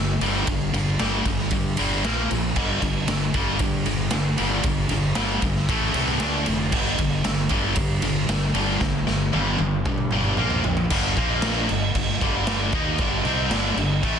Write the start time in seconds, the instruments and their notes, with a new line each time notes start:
Already playing: fingered electric bass G1, distorted electric guitar G2 D3
0.21 fingered electric bass G1, distorted electric guitar G2 D3 G3, ride
0.47 fingered electric bass G1, distorted electric guitar G2 D3, kick, ride
0.73 fingered electric bass G1, distorted electric guitar G2 D3, ride
0.99 fingered electric bass G1, distorted electric guitar G2 D3 G3, snare, ride
1.25 fingered electric bass G1, distorted electric guitar G2 D3, kick, ride
1.39 snare
1.51 fingered electric bass G2, distorted electric guitar G2 D3, kick, ride
1.77 fingered electric bass G1, distorted electric guitar G2 D3 G3, ride
2.04 fingered electric bass A#1, distorted electric guitar A#2 F3 A#3, snare, ride
2.31 fingered electric bass A#1, distorted electric guitar A#2 F3, ride
2.56 fingered electric bass G1, distorted electric guitar G2 D3 G3, kick, crash
2.82 fingered electric bass G1, distorted electric guitar G2 D3, kick, ride
3.08 fingered electric bass G1, distorted electric guitar G2 D3, snare, ride
3.34 fingered electric bass G1, distorted electric guitar G2 D3 G3, kick, ride
3.59 fingered electric bass G2, distorted electric guitar G2 D3, kick, ride
3.86 fingered electric bass G1, distorted electric guitar G2 D3, ride
4.11 fingered electric bass G1, distorted electric guitar G2 D3, snare, ride
4.38 fingered electric bass G1, distorted electric guitar G2 D3 G3, ride
4.63 fingered electric bass G1, distorted electric guitar G2 D3, kick, ride
4.89 fingered electric bass G1, distorted electric guitar G2 D3, ride
5.15 fingered electric bass G1, distorted electric guitar G2 D3 G3, snare, ride
5.42 fingered electric bass G1, distorted electric guitar G2 D3, kick, ride
5.56 snare
5.69 fingered electric bass A1, distorted electric guitar A2 E3 A3, kick, ride
5.94 fingered electric bass C2, distorted electric guitar A2 E3 A3, ride
6.20 fingered electric bass D2, distorted electric guitar D3 A3 D4, snare, ride
6.46 fingered electric bass F1, distorted electric guitar D3 A3, ride
6.72 fingered electric bass G1, distorted electric guitar G2 D3 G3, kick, crash
6.98 fingered electric bass G1, distorted electric guitar G2 D3, kick, ride
7.24 fingered electric bass G1, distorted electric guitar G2 D3, snare, ride
7.49 fingered electric bass G1, distorted electric guitar G2 D3 G3, kick, ride
7.76 distorted electric guitar G2 D3, fingered electric bass G2, kick, ride
8.02 fingered electric bass G1, distorted electric guitar G2 D3, ride
8.28 fingered electric bass G1, distorted electric guitar G2 D3, snare, ride
8.54 fingered electric bass G1, distorted electric guitar G2 D3 G3, ride
8.81 fingered electric bass G1, distorted electric guitar G2 D3, kick, snare
9.07 fingered electric bass G1, distorted electric guitar G2 D3, snare
9.32 fingered electric bass G1, distorted electric guitar G2 D3 G3, high tom
9.59 fingered electric bass G1, distorted electric guitar G2 D3, high tom
9.85 fingered electric bass G2, distorted electric guitar G2 D3, kick, mid tom
9.98 mid tom
10.11 fingered electric bass G1, distorted electric guitar G2 D3 G3, mid tom
10.24 mid tom
10.37 fingered electric bass A#1, distorted electric guitar A#2 F3 A#3, mid tom
10.50 floor tom
10.64 fingered electric bass A#1, distorted electric guitar A#2 F3, floor tom
10.77 floor tom
10.90 fingered electric bass G1, distorted electric guitar G2 D3 G3, kick, crash
11.17 fingered electric bass A#1, distorted electric guitar A#2 F3 A#3, kick, crash
11.42 snare, crash
11.69 fingered electric bass G1, distorted electric guitar G2 D3, crash
11.95 fingered electric bass G1, distorted electric guitar G2 D3, kick, crash
12.09 snare
12.21 fingered electric bass G1, distorted electric guitar G2 D3 G3, kick, crash
12.47 snare, crash
12.72 fingered electric bass D#2, distorted electric guitar D#3 A#3 D#4, kick, crash
12.98 fingered electric bass G1, distorted electric guitar G2 D3 G3, kick, crash
13.25 fingered electric bass C2, distorted electric guitar C3 G3 C4, crash
13.50 fingered electric bass G1, distorted electric guitar G2 D3 G3, snare, crash
13.76 fingered electric bass G1, distorted electric guitar G2 D3, crash
14.03 fingered electric bass A1, distorted electric guitar A2 E3 A3, kick, crash